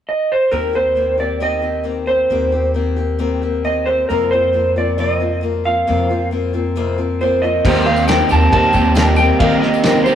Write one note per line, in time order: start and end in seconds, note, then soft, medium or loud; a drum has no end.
0.09 0.31 D#5 medium
0.32 0.54 C5 medium
0.51 2.27 D#2 medium
0.51 0.74 D#3 medium
0.51 0.74 A#3 medium
0.51 0.73 C4 medium
0.51 0.72 G4 medium
0.51 0.75 A#4 medium
0.73 0.95 A#3 soft
0.73 0.95 C4 soft
0.73 0.96 G4 soft
0.73 1.17 C5 medium
0.95 1.19 D#3 soft
0.95 1.18 A#3 soft
0.95 1.18 C4 soft
0.95 1.16 G4 soft
1.18 1.40 A#3 soft
1.18 1.40 C4 soft
1.18 1.40 G4 soft
1.18 1.42 D5 medium
1.40 1.64 D#3 medium
1.40 1.62 A#3 medium
1.40 1.61 C4 medium
1.40 1.60 G4 medium
1.40 1.84 D#5 medium
1.62 1.83 A#3 soft
1.62 1.84 C4 soft
1.62 1.84 G4 soft
1.83 2.07 D#3 soft
1.83 2.07 A#3 medium
1.83 2.07 C4 medium
1.83 2.05 G4 medium
2.06 2.29 A#3 soft
2.06 2.30 C4 soft
2.06 2.30 G4 soft
2.06 2.71 C5 medium
2.30 4.06 D#2 medium
2.30 2.53 D#3 medium
2.30 2.53 A#3 medium
2.30 2.52 C4 medium
2.30 2.51 G4 medium
2.52 2.73 A#3 soft
2.52 2.74 C4 soft
2.52 2.75 G4 soft
2.74 2.97 D#3 soft
2.74 2.97 A#3 soft
2.74 2.97 C4 medium
2.74 2.95 G4 medium
2.96 3.18 A#3 soft
2.96 3.18 C4 soft
2.96 3.19 G4 soft
3.19 3.42 D#3 medium
3.19 3.42 A#3 medium
3.19 3.42 C4 medium
3.19 3.40 G4 medium
3.42 3.63 A#3 soft
3.42 3.64 C4 soft
3.42 3.64 G4 soft
3.64 3.87 D#3 soft
3.64 3.87 A#3 medium
3.64 3.87 C4 medium
3.64 3.85 G4 medium
3.64 3.88 D#5 medium
3.86 4.09 A#3 soft
3.86 4.09 C4 soft
3.86 4.09 G4 soft
3.86 4.08 C5 medium
4.09 4.32 F2 medium
4.09 5.84 F2 medium
4.09 4.32 C3 medium
4.09 4.32 F3 medium
4.09 4.32 A#3 medium
4.09 4.32 C4 medium
4.09 4.31 F4 medium
4.09 4.30 A#4 medium
4.31 4.52 F3 soft
4.31 4.53 A#3 soft
4.31 4.53 C4 soft
4.31 4.53 F4 soft
4.31 4.77 C5 medium
4.53 4.76 F3 medium
4.53 4.76 A#3 soft
4.53 4.76 C4 medium
4.53 4.75 F4 soft
4.76 4.97 F3 soft
4.76 4.98 A#3 soft
4.76 4.98 C4 soft
4.76 4.97 F4 soft
4.76 5.00 D5 medium
4.98 5.21 F2 medium
4.98 5.21 C3 medium
4.98 5.21 F3 medium
4.98 5.20 A#3 medium
4.98 5.19 C4 medium
4.98 5.19 F4 medium
4.98 5.41 D#5 medium
5.20 5.40 F3 soft
5.20 5.41 A#3 soft
5.20 5.42 C4 soft
5.20 5.43 F4 medium
5.41 5.64 F3 medium
5.41 5.64 A#3 medium
5.41 5.64 C4 medium
5.41 5.63 F4 medium
5.64 5.86 F3 soft
5.64 5.86 A#3 soft
5.64 5.87 C4 soft
5.64 5.87 F4 soft
5.64 6.28 F5 medium
5.87 6.10 F2 medium
5.87 7.62 F2 medium
5.87 6.10 C3 medium
5.87 6.10 F3 medium
5.87 6.10 A#3 medium
5.87 6.09 C4 medium
5.87 6.08 F4 medium
6.09 6.30 F3 soft
6.09 6.31 A#3 soft
6.09 6.31 C4 soft
6.09 6.32 F4 soft
6.31 6.53 F3 medium
6.31 6.53 A#3 medium
6.31 6.53 C4 medium
6.31 6.52 F4 medium
6.53 6.76 F3 soft
6.53 6.76 A#3 soft
6.53 6.76 C4 medium
6.53 6.76 F4 medium
6.76 6.98 F2 medium
6.76 6.98 C3 medium
6.76 6.98 F3 medium
6.76 6.97 A#3 medium
6.76 6.97 C4 medium
6.76 6.96 F4 medium
6.98 7.20 F3 soft
6.98 7.20 A#3 soft
6.98 7.21 C4 soft
6.98 7.20 F4 medium
7.21 7.43 F3 medium
7.21 7.43 A#3 medium
7.21 7.42 C4 medium
7.21 7.41 F4 medium
7.21 7.44 C5 medium
7.42 7.65 F3 soft
7.42 7.65 A#3 soft
7.42 7.65 C4 soft
7.42 7.65 F4 soft
7.42 7.88 D#5 medium
7.64 8.19 D#2 medium
7.64 7.87 D#3 medium
7.64 10.15 G3 medium
7.64 7.88 A#3 medium
7.64 10.15 C4 medium
7.64 7.87 C4 medium
7.64 7.99 D#4 medium
7.64 10.15 D#4 medium
7.64 8.00 G4 medium
7.64 7.86 G4 medium
7.64 8.00 C5 loud
7.64 kick loud
7.64 crash loud
7.75 tambourine soft
7.86 8.08 A#3 soft
7.86 8.09 C4 medium
7.86 8.08 G4 medium
7.86 8.07 F5 medium
7.96 tambourine medium
8.08 8.31 D#3 medium
8.08 8.30 A#3 medium
8.08 8.30 C4 medium
8.08 8.43 D#4 medium
8.08 8.44 G4 medium
8.08 8.29 G4 medium
8.08 8.44 C5 medium
8.08 8.29 G5 medium
8.08 snare loud
8.08 ride bell medium
8.08 tambourine loud
8.19 tambourine soft
8.29 8.49 D#2 medium
8.29 8.51 A#3 soft
8.29 8.51 C4 soft
8.29 8.52 G4 medium
8.29 8.51 A5 loud
8.29 tambourine medium
8.35 8.52 D#3 medium
8.41 tambourine soft
8.51 8.70 D#2 loud
8.51 8.74 D#3 medium
8.51 8.74 A#3 medium
8.51 8.75 C4 medium
8.51 8.87 D#4 medium
8.51 8.87 G4 medium
8.51 8.73 G4 medium
8.51 8.87 A#4 medium
8.51 9.21 A5 loud
8.51 kick loud
8.51 ride bell medium
8.51 tambourine soft
8.63 tambourine soft
8.73 9.29 D#2 medium
8.73 8.95 A#3 soft
8.73 8.96 C4 soft
8.73 8.97 G4 medium
8.73 kick medium
8.73 tambourine medium
8.78 8.95 D#3 medium
8.83 tambourine soft
8.95 9.18 D#3 medium
8.95 9.19 A#3 medium
8.95 9.18 C4 medium
8.95 9.31 D#4 medium
8.95 9.31 G4 medium
8.95 9.17 G4 loud
8.95 9.32 A#4 medium
8.95 snare loud
8.95 ride bell medium
8.95 tambourine loud
9.16 9.40 A#3 soft
9.16 9.40 C4 soft
9.16 9.40 G4 medium
9.16 9.38 G5 loud
9.16 tambourine medium
9.39 9.62 D#3 medium
9.39 9.58 D#3 medium
9.39 9.63 A#3 medium
9.39 9.62 C4 medium
9.39 9.75 D#4 medium
9.39 9.75 G4 medium
9.39 9.61 G4 loud
9.39 9.76 A#4 loud
9.39 9.59 F5 medium
9.39 kick loud
9.39 ride bell medium
9.51 tambourine soft
9.60 9.83 C4 soft
9.60 9.84 G4 soft
9.60 10.02 D#5 medium
9.60 snare soft
9.64 9.83 A#3 soft
9.74 tambourine medium
9.83 10.06 D#3 medium
9.83 10.06 A#3 medium
9.83 10.06 C4 medium
9.83 10.15 D#4 medium
9.83 10.15 G4 medium
9.83 10.05 G4 medium
9.83 10.15 C5 medium
9.83 snare loud
9.83 ride bell medium
9.83 tambourine loud
9.97 tambourine soft
10.04 10.15 C4 medium
10.04 10.15 G4 medium
10.04 10.15 C5 medium
10.04 tambourine medium
10.08 10.15 D#3 medium
10.08 10.15 A#3 soft